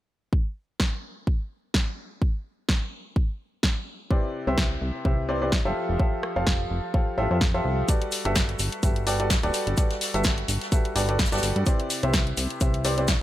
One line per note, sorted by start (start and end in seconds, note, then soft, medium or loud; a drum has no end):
0.33 kick loud
0.80 kick loud
0.80 cross-stick medium
0.80 snare loud
1.27 kick loud
1.74 kick loud
1.74 snare loud
2.22 kick loud
2.69 kick loud
2.69 cross-stick medium
2.69 snare loud
3.16 kick loud
3.63 kick loud
3.63 snare loud
4.11 4.44 C3 medium
4.11 4.44 E4 medium
4.11 4.44 G4 medium
4.11 4.44 B4 medium
4.11 4.44 C5 medium
4.11 4.44 D5 medium
4.11 kick loud
4.47 4.78 C2 medium
4.47 5.03 C3 medium
4.47 5.03 E4 medium
4.47 5.03 G4 medium
4.47 5.03 B4 medium
4.47 5.03 C5 medium
4.47 5.03 E5 medium
4.58 kick loud
4.58 cross-stick medium
4.58 snare loud
4.81 4.92 C2 medium
5.05 5.61 C2 medium
5.05 5.26 C3 medium
5.05 5.26 E4 medium
5.05 5.25 G4 medium
5.05 5.26 B4 medium
5.05 5.26 C5 medium
5.05 5.26 E5 medium
5.05 kick loud
5.29 5.39 C3 medium
5.29 5.39 E4 medium
5.29 5.39 G4 medium
5.29 5.39 B4 medium
5.29 5.39 C5 medium
5.29 5.39 D5 loud
5.42 5.54 C3 medium
5.42 5.54 E4 medium
5.42 5.54 G4 medium
5.42 5.54 B4 medium
5.42 5.54 C5 medium
5.42 5.54 D5 medium
5.52 kick loud
5.52 snare loud
5.65 5.74 G1 loud
5.65 5.97 F3 medium
5.65 5.97 F4 medium
5.65 5.97 G4 medium
5.65 5.97 A4 medium
5.65 5.97 C5 medium
5.65 5.97 E5 loud
5.89 5.97 F1 medium
5.99 6.33 F3 medium
5.99 6.33 F4 medium
5.99 6.33 G4 medium
5.99 6.33 A4 medium
5.99 6.33 C5 medium
5.99 6.33 E5 medium
5.99 kick loud
6.23 cross-stick medium
6.36 6.67 F1 medium
6.36 6.92 F3 medium
6.36 6.92 F4 medium
6.36 6.91 G4 medium
6.36 6.92 A4 medium
6.36 6.91 C5 medium
6.36 6.91 F5 medium
6.47 kick loud
6.47 cross-stick medium
6.47 snare loud
6.70 6.81 F1 medium
6.94 7.14 F3 medium
6.94 7.15 F4 medium
6.94 7.14 G4 medium
6.94 7.14 A4 medium
6.94 7.14 C5 medium
6.94 7.14 F5 medium
6.94 kick loud
7.18 7.28 A1 medium
7.18 7.28 F3 medium
7.18 7.28 F4 medium
7.18 7.28 G4 medium
7.18 7.28 A4 medium
7.18 7.28 C5 medium
7.18 7.28 E5 loud
7.31 7.61 F2 loud
7.31 7.43 F3 medium
7.31 7.43 F4 medium
7.31 7.43 G4 medium
7.31 7.43 A4 medium
7.31 7.43 C5 medium
7.31 7.43 E5 medium
7.41 kick loud
7.41 snare loud
7.54 7.86 F3 loud
7.54 7.86 F4 medium
7.54 7.86 G4 medium
7.54 7.86 A4 medium
7.54 7.86 C5 medium
7.54 7.86 E5 loud
7.65 7.84 C2 medium
7.88 8.22 G3 medium
7.88 8.22 F#4 medium
7.88 8.22 G4 medium
7.88 8.22 A4 medium
7.88 8.22 B4 medium
7.88 8.22 D5 medium
7.88 kick loud
7.88 closed hi-hat medium
7.88 shaker medium
8.02 closed hi-hat soft
8.12 open hi-hat loud
8.12 shaker medium
8.25 8.56 G1 medium
8.25 8.80 G3 medium
8.25 8.80 F#4 medium
8.25 8.80 G4 medium
8.25 8.80 A4 medium
8.25 8.80 B4 medium
8.25 8.80 E5 medium
8.25 closed hi-hat soft
8.35 kick loud
8.35 cross-stick medium
8.35 snare loud
8.35 closed hi-hat loud
8.35 shaker medium
8.49 closed hi-hat soft
8.59 8.70 G1 medium
8.59 open hi-hat loud
8.59 shaker medium
8.72 closed hi-hat soft
8.83 9.39 G1 medium
8.83 9.03 G3 medium
8.83 9.03 F#4 medium
8.83 9.03 G4 medium
8.83 9.03 A4 medium
8.83 9.03 B4 medium
8.83 9.03 E5 medium
8.83 kick loud
8.83 closed hi-hat medium
8.83 shaker medium
8.96 closed hi-hat soft
9.07 9.17 G3 medium
9.07 9.17 F#4 medium
9.07 9.17 G4 medium
9.07 9.17 A4 medium
9.07 9.17 B4 medium
9.07 9.17 D5 loud
9.07 open hi-hat loud
9.07 shaker medium
9.20 9.32 G3 medium
9.20 9.32 F#4 medium
9.20 9.32 G4 medium
9.20 9.32 A4 medium
9.20 9.32 B4 medium
9.20 9.32 D5 medium
9.20 closed hi-hat soft
9.30 kick loud
9.30 snare loud
9.30 closed hi-hat loud
9.30 shaker medium
9.43 9.52 D1 loud
9.43 9.75 G3 loud
9.43 9.75 F#4 medium
9.43 9.75 G4 medium
9.43 9.75 A4 medium
9.43 9.75 B4 medium
9.43 9.75 D5 loud
9.43 closed hi-hat soft
9.54 open hi-hat loud
9.54 shaker medium
9.67 9.75 G1 medium
9.67 closed hi-hat soft
9.77 10.11 G3 medium
9.77 10.11 F#4 medium
9.77 10.11 G4 medium
9.77 10.11 A4 medium
9.77 10.11 B4 medium
9.77 10.11 D5 medium
9.77 kick loud
9.77 closed hi-hat medium
9.77 shaker medium
9.90 snare soft
9.90 closed hi-hat soft
10.01 snare medium
10.01 open hi-hat loud
10.01 shaker medium
10.14 10.45 G1 medium
10.14 10.69 G3 medium
10.14 10.69 F#4 medium
10.14 10.69 G4 medium
10.14 10.69 A4 medium
10.14 10.69 B4 medium
10.14 10.69 E5 medium
10.14 closed hi-hat soft
10.24 kick loud
10.24 cross-stick medium
10.24 snare loud
10.24 closed hi-hat medium
10.24 shaker medium
10.38 closed hi-hat soft
10.48 10.59 G1 medium
10.48 open hi-hat loud
10.48 shaker medium
10.61 snare soft
10.61 closed hi-hat soft
10.72 10.92 G3 medium
10.72 10.92 F#4 medium
10.72 10.92 G4 medium
10.72 10.92 A4 medium
10.72 10.92 B4 medium
10.72 10.92 E5 medium
10.72 kick loud
10.72 closed hi-hat medium
10.72 shaker medium
10.85 closed hi-hat soft
10.96 11.28 G1 loud
10.96 11.06 G3 medium
10.96 11.06 F#4 medium
10.96 11.06 G4 medium
10.96 11.06 A4 medium
10.96 11.06 B4 medium
10.96 11.06 D5 loud
10.96 open hi-hat loud
10.96 shaker medium
11.09 11.21 G3 medium
11.09 11.21 F#4 medium
11.09 11.21 G4 medium
11.09 11.21 A4 medium
11.09 11.21 B4 medium
11.09 11.21 D5 medium
11.09 closed hi-hat soft
11.19 kick loud
11.19 snare medium
11.19 snare loud
11.19 closed hi-hat medium
11.19 shaker medium
11.25 snare medium
11.25 shaker medium
11.32 11.40 G1 medium
11.32 11.64 G3 loud
11.32 11.64 F#4 medium
11.32 11.64 G4 medium
11.32 11.64 A4 medium
11.32 11.64 B4 medium
11.32 11.64 D5 loud
11.32 snare medium
11.32 closed hi-hat soft
11.32 shaker medium
11.38 snare medium
11.38 shaker medium
11.43 11.53 G1 medium
11.43 open hi-hat loud
11.43 shaker medium
11.56 11.64 G2 loud
11.56 closed hi-hat soft
11.66 12.00 C3 medium
11.66 12.00 E4 medium
11.66 12.00 G4 medium
11.66 12.00 B4 medium
11.66 12.00 C5 medium
11.66 12.00 D5 medium
11.66 kick loud
11.66 closed hi-hat medium
11.66 shaker medium
11.80 closed hi-hat soft
11.90 open hi-hat loud
11.90 shaker medium
12.03 12.34 C2 loud
12.03 12.58 C3 medium
12.03 12.58 E4 medium
12.03 12.58 G4 medium
12.03 12.58 B4 medium
12.03 12.58 C5 medium
12.03 12.58 E5 medium
12.03 closed hi-hat soft
12.14 kick loud
12.14 cross-stick medium
12.14 snare loud
12.14 closed hi-hat medium
12.14 shaker medium
12.27 closed hi-hat soft
12.37 12.47 C2 medium
12.37 open hi-hat loud
12.37 shaker medium
12.50 closed hi-hat soft
12.61 13.17 C2 medium
12.61 12.81 C3 medium
12.61 12.81 E4 medium
12.61 12.81 G4 medium
12.61 12.81 B4 medium
12.61 12.81 C5 medium
12.61 12.81 E5 medium
12.61 kick loud
12.61 closed hi-hat medium
12.61 shaker medium
12.74 closed hi-hat soft
12.85 12.95 C3 medium
12.85 12.95 E4 medium
12.85 12.95 G4 medium
12.85 12.95 B4 medium
12.85 12.95 C5 medium
12.85 12.95 D5 loud
12.85 open hi-hat loud
12.85 shaker medium
12.98 13.10 C3 medium
12.98 13.10 E4 medium
12.98 13.10 G4 medium
12.98 13.10 B4 medium
12.98 13.10 C5 medium
12.98 13.10 D5 medium
12.98 closed hi-hat soft
13.08 kick loud
13.08 snare loud
13.08 closed hi-hat medium
13.08 shaker medium